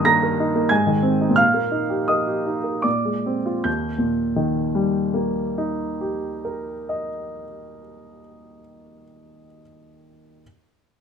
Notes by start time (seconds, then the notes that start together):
Already playing: G2 D#3 A#3 D#4 D#5 D#6
0.05 A#3 A#5 A#6
0.23 A#4
0.40 D#4
0.55 A#3
0.69 G#2 G#5 G#6
0.87 D#3
1.03 C4
1.21 D#4
1.30 A#2
1.36 F5 F6
1.54 A#3
1.71 D#4
1.90 G4
2.08 A#4 D#5 D#6
2.27 G4
2.46 D#4
2.64 A#4
2.82 A#2 D5 D6
3.05 G#3
3.26 C4
3.46 F4
3.64 D#2 G6
3.98 A#2
4.36 D#3
4.75 G3
5.14 A#3
5.58 D#4
6.01 G4
6.45 A#4
6.89 D#5